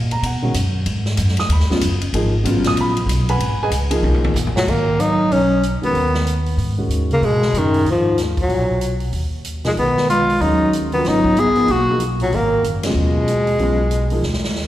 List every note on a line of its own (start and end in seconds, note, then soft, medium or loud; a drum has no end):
0.00 0.22 A#2 medium
0.11 0.23 A#5 medium
0.11 ride medium
0.23 0.53 B2 medium
0.23 0.44 F#5 medium
0.23 ride medium
0.42 0.53 D#3 medium
0.42 0.53 G#3 medium
0.42 0.54 C#4 medium
0.42 0.54 F#4 medium
0.54 0.85 F#2 loud
0.54 hi-hat pedal medium
0.54 ride medium
0.86 1.17 G#2 medium
0.86 ride medium
1.06 snare soft
1.17 1.48 F#2 medium
1.17 hi-hat pedal medium
1.17 ride medium
1.28 snare soft
1.37 1.50 D#6 loud
1.37 snare soft
1.37 ride medium
1.49 1.68 D#2 medium
1.49 1.70 B5 medium
1.49 ride medium
1.60 snare soft
1.69 1.81 C#3 medium
1.69 1.81 F#3 medium
1.69 1.81 B3 medium
1.69 1.81 F4 medium
1.69 muted upright bass stroke soft
1.69 snare soft
1.81 2.12 F#1 loud
1.81 hi-hat pedal medium
1.81 ride medium
2.01 ride medium
2.13 2.43 G#1 medium
2.13 2.31 F3 medium
2.13 2.31 A#3 medium
2.13 2.32 D#4 medium
2.13 2.32 G#4 medium
2.13 ride medium
2.44 2.74 A1 medium
2.44 2.92 C#3 medium
2.44 2.93 F#3 medium
2.44 2.93 B3 medium
2.44 2.93 F4 medium
2.44 hi-hat pedal medium
2.44 ride medium
2.64 2.78 D#6 loud
2.64 snare medium
2.64 ride medium
2.75 3.06 A#1 medium
2.75 ride medium
2.81 2.91 B5 loud
2.97 ride medium
3.06 3.37 B1 loud
3.06 hi-hat pedal medium
3.06 ride medium
3.29 3.58 B4 medium
3.29 3.59 F#5 medium
3.29 3.59 G#5 medium
3.29 3.59 B5 loud
3.29 ride medium
3.38 3.57 G#1 medium
3.38 ride medium
3.58 muted upright bass stroke soft
3.63 3.70 G#4 medium
3.63 3.70 B4 medium
3.63 3.70 D#5 medium
3.63 3.69 G#5 loud
3.70 4.02 C#2 medium
3.70 hi-hat pedal medium
3.70 ride medium
3.91 4.33 F3 medium
3.91 4.33 A#3 medium
3.91 4.33 D#4 medium
3.91 4.33 G#4 medium
3.91 ride medium
4.03 4.33 B1 loud
4.03 high tom medium
4.14 high tom medium
4.24 high tom medium
4.34 4.53 A#1 loud
4.34 floor tom medium
4.34 hi-hat pedal medium
4.47 floor tom medium
4.54 4.68 A#2 medium
4.54 4.71 F#3 medium
4.54 muted upright bass stroke soft
4.54 snare loud
4.67 5.28 G#1 medium
4.67 5.01 D#3 medium
4.67 5.02 A#3 medium
4.67 kick medium
4.67 crash medium
5.00 5.32 F#3 medium
5.00 5.34 D#4 medium
5.00 closed hi-hat soft
5.30 5.78 B1 medium
5.30 5.63 F#3 medium
5.30 5.64 C#4 medium
5.30 open hi-hat soft
5.63 closed hi-hat medium
5.82 5.93 D#3 medium
5.82 6.43 D#3 medium
5.82 5.94 G#3 medium
5.82 6.44 B3 medium
5.82 5.94 C#4 medium
5.82 5.94 F#4 medium
5.82 muted upright bass stroke soft
5.82 open hi-hat soft
5.93 6.55 D#2 medium
5.93 open hi-hat soft
6.15 snare medium
6.27 closed hi-hat medium
6.46 open hi-hat soft
6.57 6.88 G#2 medium
6.57 open hi-hat soft
6.78 7.20 D#3 medium
6.78 7.20 G#3 soft
6.78 7.20 C#4 medium
6.78 7.20 F#4 medium
6.89 7.19 D#2 medium
6.89 closed hi-hat medium
7.11 7.26 C#3 medium
7.11 7.26 A#3 medium
7.11 open hi-hat soft
7.22 7.52 G#2 medium
7.22 7.59 B2 medium
7.22 7.60 G#3 loud
7.22 open hi-hat soft
7.42 snare soft
7.53 7.87 F#2 medium
7.53 7.83 A2 medium
7.53 closed hi-hat soft
7.58 7.88 D#3 medium
7.74 open hi-hat soft
7.85 8.46 D#2 medium
7.85 8.17 G#2 medium
7.85 open hi-hat soft
7.91 8.18 F3 medium
8.18 snare soft
8.18 closed hi-hat medium
8.37 8.99 A#2 medium
8.37 kick medium
8.37 open hi-hat soft
8.42 9.00 F#3 medium
8.49 9.10 B1 medium
8.49 open hi-hat soft
8.81 closed hi-hat soft
9.00 open hi-hat soft
9.13 9.74 D#2 medium
9.13 open hi-hat soft
9.45 closed hi-hat medium
9.64 9.70 B2 medium
9.64 9.76 F3 medium
9.64 9.72 G#3 medium
9.64 9.76 A#3 medium
9.64 9.76 D#4 medium
9.64 9.76 G#4 medium
9.64 snare soft
9.64 open hi-hat soft
9.77 10.38 B1 medium
9.77 10.07 D#3 medium
9.77 10.08 B3 medium
9.77 open hi-hat soft
9.97 snare soft
10.10 10.43 G#3 medium
10.10 10.43 F4 medium
10.10 closed hi-hat medium
10.30 open hi-hat soft
10.40 11.01 D#2 medium
10.40 10.89 D#3 medium
10.40 10.73 F#3 medium
10.40 10.89 G#3 medium
10.40 10.89 C#4 medium
10.40 10.73 D#4 medium
10.40 10.89 F#4 medium
10.40 open hi-hat soft
10.73 closed hi-hat medium
10.92 11.34 C#3 medium
10.92 11.06 D#3 medium
10.92 11.34 F#3 medium
10.92 11.34 B3 medium
10.92 11.09 B3 medium
10.92 11.35 F4 medium
10.92 open hi-hat soft
11.04 11.65 G#1 medium
11.04 11.40 F#3 medium
11.04 11.41 D#4 medium
11.04 snare soft
11.04 open hi-hat soft
11.24 kick soft
11.37 11.71 B3 medium
11.37 11.73 G#4 loud
11.37 closed hi-hat soft
11.55 11.67 F3 medium
11.55 11.67 A#3 medium
11.55 11.67 D#4 medium
11.55 11.67 G#4 medium
11.55 open hi-hat soft
11.68 12.29 B1 medium
11.68 12.01 A#3 medium
11.68 12.02 F#4 medium
11.68 open hi-hat soft
11.89 12.00 F3 medium
11.89 12.00 A#3 medium
11.89 12.00 D#4 medium
11.89 12.00 G#4 medium
12.00 closed hi-hat medium
12.20 12.34 A#2 medium
12.20 12.36 F#3 medium
12.20 open hi-hat soft
12.32 12.62 G#1 medium
12.32 12.64 D#3 medium
12.32 12.65 A#3 medium
12.32 open hi-hat soft
12.63 12.93 F#1 medium
12.63 closed hi-hat soft
12.83 14.51 B2 medium
12.83 13.26 C#3 medium
12.83 13.26 F#3 medium
12.83 14.52 G#3 medium
12.83 13.26 B3 medium
12.83 13.26 F4 medium
12.83 snare medium
12.83 ride medium
12.95 13.56 D#2 medium
13.28 closed hi-hat soft
13.47 open hi-hat soft
13.58 14.20 B1 medium
13.58 13.77 C#3 medium
13.58 13.77 F#3 medium
13.58 13.78 B3 medium
13.58 13.78 F4 medium
13.58 open hi-hat soft
13.91 closed hi-hat medium
14.10 14.22 F3 medium
14.10 14.22 A#3 medium
14.10 14.23 D#4 medium
14.10 14.23 G#4 medium
14.10 open hi-hat soft
14.22 14.67 D#2 medium
14.22 snare soft
14.33 snare medium
14.44 snare medium
14.56 snare medium